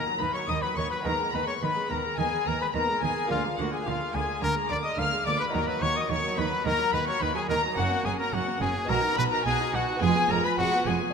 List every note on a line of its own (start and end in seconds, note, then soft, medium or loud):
0.00 0.17 D#3 medium
0.00 0.99 A#3 medium
0.00 0.99 D#4 medium
0.00 1.00 F#4 medium
0.00 0.19 A#5 loud
0.00 0.20 A#5 medium
0.06 0.20 F#3 medium
0.20 0.28 D#2 medium
0.20 0.28 D#3 medium
0.20 0.45 D#3 medium
0.20 0.34 A#3 medium
0.20 0.33 B4 medium
0.20 0.34 B5 medium
0.34 0.48 F#3 medium
0.34 0.50 C#5 medium
0.34 0.40 C#6 medium
0.34 0.49 C#6 loud
0.48 0.56 D#2 medium
0.48 0.56 D#3 medium
0.48 0.74 D#3 medium
0.48 0.62 A#3 medium
0.48 0.64 D#5 medium
0.48 0.62 D#6 loud
0.48 0.54 D#6 loud
0.62 0.77 F#3 medium
0.62 0.76 B4 medium
0.62 0.76 B5 medium
0.62 0.77 B5 medium
0.76 0.85 D#2 medium
0.76 0.85 D#3 medium
0.76 1.03 D#3 medium
0.76 0.91 A#3 medium
0.76 0.90 C#5 medium
0.76 0.91 C#6 medium
0.76 0.90 C#6 loud
0.90 1.05 F#3 medium
0.90 1.07 B4 medium
0.90 0.96 B5 medium
0.90 1.05 B5 loud
1.01 3.24 B3 medium
1.01 3.24 D#4 medium
1.01 3.25 G#4 medium
1.01 1.32 A#5 medium
1.05 1.13 D#2 medium
1.05 1.13 D#3 medium
1.05 1.30 D#3 medium
1.05 1.18 B3 medium
1.05 1.32 A#4 loud
1.05 1.33 A#5 loud
1.19 1.33 G#3 medium
1.32 1.41 D#2 medium
1.32 1.59 D#3 medium
1.32 1.42 D#3 medium
1.32 1.47 B3 medium
1.32 1.47 B4 medium
1.32 1.47 B5 medium
1.32 1.47 B5 loud
1.46 1.61 G#3 medium
1.46 1.54 C#5 medium
1.46 1.60 C#6 medium
1.46 1.62 C#6 medium
1.61 1.70 D#2 medium
1.61 1.70 D#3 medium
1.61 1.87 D#3 medium
1.61 1.74 B3 medium
1.61 1.92 B4 medium
1.61 1.89 B5 medium
1.61 1.89 B5 loud
1.75 1.89 G#3 medium
1.90 1.98 D#2 medium
1.90 2.15 D#3 medium
1.90 1.98 D#3 medium
1.90 2.04 B3 medium
1.90 2.20 A#4 medium
1.90 2.18 A#5 medium
1.90 2.18 A#5 loud
2.04 2.18 G#3 medium
2.17 2.26 D#2 medium
2.17 2.43 D#3 medium
2.17 2.26 D#3 medium
2.17 2.31 B3 medium
2.17 2.49 G#4 loud
2.17 2.46 G#5 loud
2.17 2.45 G#5 medium
2.32 2.46 G#3 medium
2.46 2.54 D#2 medium
2.46 2.71 D#3 medium
2.46 2.55 D#3 medium
2.46 2.60 B3 medium
2.46 2.61 A#4 medium
2.46 2.60 A#5 loud
2.46 2.60 A#5 medium
2.60 2.74 G#3 medium
2.60 2.67 B4 medium
2.60 2.74 B5 medium
2.60 2.74 B5 loud
2.74 2.82 D#2 medium
2.74 2.83 D#3 medium
2.74 2.99 D#3 medium
2.74 2.87 B3 medium
2.74 3.02 A#4 medium
2.74 3.02 A#5 loud
2.74 3.01 A#5 medium
2.87 3.01 G#3 medium
3.01 3.10 D#2 medium
3.01 3.10 D#3 medium
3.01 3.27 D#3 medium
3.01 3.16 B3 medium
3.01 3.30 G#4 medium
3.01 3.29 G#5 loud
3.15 3.29 G#3 medium
3.26 5.47 A#3 medium
3.26 3.42 A#3 medium
3.26 5.48 F4 medium
3.26 5.49 G#4 medium
3.30 3.38 D2 medium
3.30 3.55 D3 medium
3.30 3.39 D3 medium
3.30 3.43 F4 loud
3.30 3.58 F5 loud
3.30 3.57 F5 medium
3.44 3.58 G#3 medium
3.57 3.66 D2 medium
3.57 3.83 D3 medium
3.57 3.66 D3 medium
3.57 3.72 A#3 medium
3.57 3.72 F#4 medium
3.57 3.63 F#5 medium
3.57 3.72 F#5 loud
3.71 3.86 G#3 medium
3.71 3.89 G#4 medium
3.71 3.85 G#5 medium
3.71 3.86 G#5 medium
3.85 3.94 D2 medium
3.85 4.11 D3 medium
3.85 3.94 D3 medium
3.85 3.99 A#3 medium
3.85 4.17 F4 medium
3.85 4.13 F5 medium
3.85 4.13 F5 loud
3.99 4.13 G#3 medium
4.13 4.22 D2 medium
4.13 4.39 D3 medium
4.13 4.22 D3 medium
4.13 4.27 A#3 medium
4.13 4.42 G#4 medium
4.13 4.41 G#5 medium
4.13 4.41 G#5 loud
4.27 4.41 G#3 medium
4.41 4.50 D2 medium
4.41 4.66 D3 medium
4.41 4.50 D3 medium
4.41 4.54 A#3 medium
4.41 4.55 A#4 loud
4.41 4.69 A#5 loud
4.41 4.50 A#5 medium
4.55 4.69 G#3 medium
4.69 4.78 D2 medium
4.69 4.94 D3 medium
4.69 4.77 D3 medium
4.69 4.83 A#3 medium
4.69 4.77 D5 loud
4.69 4.75 D6 loud
4.69 4.83 D6 loud
4.83 4.97 G#3 medium
4.83 5.00 D#5 medium
4.83 4.97 D#6 loud
4.83 4.97 D#6 medium
4.96 5.06 D2 medium
4.96 5.22 D3 medium
4.96 5.05 D3 medium
4.96 5.10 A#3 medium
4.96 5.25 F5 loud
4.96 5.24 F6 loud
4.96 5.25 F6 loud
5.11 5.25 G#3 medium
5.25 5.33 D2 medium
5.25 5.50 D3 medium
5.25 5.33 D3 medium
5.25 5.39 A#3 medium
5.25 5.39 D5 medium
5.25 5.39 D6 loud
5.25 5.31 D6 loud
5.39 5.53 G#3 medium
5.39 5.46 B4 medium
5.39 5.53 B5 loud
5.39 5.53 B5 medium
5.49 7.71 A#3 medium
5.49 7.72 D#4 medium
5.49 7.72 F#4 medium
5.53 5.61 D#2 medium
5.53 5.78 D#3 medium
5.53 5.61 D#3 medium
5.53 5.66 A#3 medium
5.53 5.69 A#4 medium
5.53 5.59 A#5 medium
5.53 5.67 A#5 loud
5.67 5.81 F#3 medium
5.67 5.84 B4 medium
5.67 5.81 B5 medium
5.67 5.81 B5 loud
5.80 5.89 D#2 medium
5.80 6.06 D#3 medium
5.80 5.89 D#3 medium
5.80 5.95 A#3 medium
5.80 5.98 C#5 loud
5.80 5.95 C#6 loud
5.80 5.95 C#6 medium
5.95 6.09 F#3 medium
5.95 6.11 D#5 medium
5.95 6.09 D#6 medium
5.95 6.09 D#6 loud
6.08 6.17 D#2 medium
6.08 6.34 D#3 medium
6.08 6.17 D#3 medium
6.08 6.22 A#3 medium
6.08 6.40 C#5 medium
6.08 6.36 C#6 loud
6.08 6.37 C#6 medium
6.23 6.37 F#3 medium
6.36 6.45 D#2 medium
6.36 6.62 D#3 medium
6.36 6.45 D#3 medium
6.36 6.51 A#3 medium
6.36 6.67 B4 medium
6.36 6.65 B5 loud
6.51 6.65 F#3 medium
6.65 6.73 D#2 medium
6.65 6.90 D#3 medium
6.65 6.73 D#3 loud
6.65 6.78 A#3 medium
6.65 6.93 A#4 loud
6.65 6.92 A#5 loud
6.65 6.93 A#5 loud
6.79 6.93 F#3 medium
6.93 7.01 D#2 medium
6.93 7.01 D#3 medium
6.93 7.18 D#3 medium
6.93 7.07 A#3 medium
6.93 7.07 B4 loud
6.93 6.99 B5 loud
6.93 7.07 B5 medium
7.07 7.21 F#3 medium
7.07 7.23 C#5 medium
7.07 7.21 C#6 medium
7.07 7.21 C#6 loud
7.21 7.29 D#2 medium
7.21 7.46 D#3 medium
7.21 7.29 D#3 medium
7.21 7.34 A#3 medium
7.21 7.35 B4 loud
7.21 7.35 B5 loud
7.21 7.27 B5 loud
7.35 7.49 F#3 medium
7.35 7.49 G#4 medium
7.35 7.41 G#5 medium
7.35 7.42 G#5 loud
7.49 7.57 D#2 medium
7.49 7.74 D#3 medium
7.49 7.57 D#3 medium
7.49 7.63 A#3 medium
7.49 7.62 A#4 medium
7.49 7.77 A#5 loud
7.64 7.77 F#3 medium
7.73 8.83 A#3 medium
7.73 8.84 C#4 medium
7.73 8.85 F#4 medium
7.73 8.04 F#5 loud
7.77 7.85 F#1 loud
7.77 8.02 F#2 medium
7.77 7.85 F#2 loud
7.77 7.90 C#4 medium
7.77 8.06 F#4 loud
7.77 8.05 F#5 loud
7.92 8.05 A#3 medium
8.05 8.13 F#1 medium
8.05 8.13 F#2 medium
8.05 8.30 F#2 medium
8.05 8.19 C#4 medium
8.05 8.18 G#4 medium
8.05 8.11 G#5 loud
8.05 8.19 G#5 loud
8.19 8.33 A#3 medium
8.19 8.35 A#4 medium
8.19 8.33 A#5 medium
8.19 8.33 A#5 loud
8.33 8.41 F#1 medium
8.33 8.41 F#2 medium
8.33 8.58 F#2 medium
8.33 8.46 C#4 medium
8.33 8.61 F#4 loud
8.33 8.61 F#5 loud
8.47 8.61 A#3 medium
8.61 8.69 F#1 medium
8.61 8.69 F#2 medium
8.61 8.86 F#2 medium
8.61 8.75 C#4 medium
8.61 8.91 G#4 loud
8.61 8.89 G#5 loud
8.61 8.69 G#5 medium
8.76 8.89 A#3 medium
8.85 8.97 B1 medium
8.85 9.95 B3 medium
8.85 9.96 D#4 medium
8.85 9.97 F#4 medium
8.85 9.16 A#5 loud
8.89 8.97 B2 medium
8.89 9.14 B2 medium
8.89 9.02 F#4 medium
8.89 9.17 A#4 loud
8.89 9.17 A#5 loud
9.03 9.17 D#4 medium
9.17 9.25 B1 medium
9.17 9.42 B2 medium
9.17 9.26 B2 medium
9.17 9.31 F#4 medium
9.17 9.24 B4 loud
9.17 9.22 B5 loud
9.17 9.31 B5 loud
9.31 9.45 D#4 medium
9.31 9.45 A#4 loud
9.31 9.45 A#5 loud
9.45 9.53 B1 medium
9.45 9.54 B2 medium
9.45 9.71 B2 medium
9.45 9.58 F#4 medium
9.45 9.76 G#4 loud
9.45 9.73 G#5 loud
9.59 9.73 D#4 medium
9.73 9.81 B1 medium
9.73 9.99 B2 medium
9.73 9.82 B2 medium
9.73 9.87 F#4 medium
9.73 10.02 F#4 loud
9.73 9.81 F#5 loud
9.73 10.01 F#5 loud
9.88 10.02 D#4 medium
9.97 11.09 B3 medium
9.97 11.10 F4 medium
9.97 11.10 G#4 medium
10.01 10.09 F1 loud
10.01 10.27 F2 medium
10.01 10.09 F2 loud
10.01 10.15 G#3 medium
10.01 10.32 G#4 loud
10.01 10.29 G#5 loud
10.01 10.30 G#5 loud
10.16 10.30 B3 medium
10.29 10.37 F1 medium
10.29 10.38 F2 medium
10.29 10.55 F2 medium
10.29 10.44 G#3 medium
10.29 10.46 A#4 loud
10.29 10.44 A#5 loud
10.44 10.58 B3 medium
10.44 10.58 B4 medium
10.44 10.58 B5 loud
10.44 10.51 B5 loud
10.58 10.66 F1 medium
10.58 10.84 F2 medium
10.58 10.66 F2 medium
10.58 10.71 G#3 medium
10.58 10.89 F#4 loud
10.58 10.86 F#5 loud
10.58 10.87 F#5 loud
10.73 10.87 B3 medium
10.86 10.94 F1 medium
10.86 10.95 F2 medium
10.86 11.12 F2 medium
10.86 11.01 G#3 medium
10.86 11.13 G#4 medium
10.86 11.13 G#5 medium
10.86 11.13 G#5 loud
11.01 11.13 B3 medium
11.10 11.13 D4 medium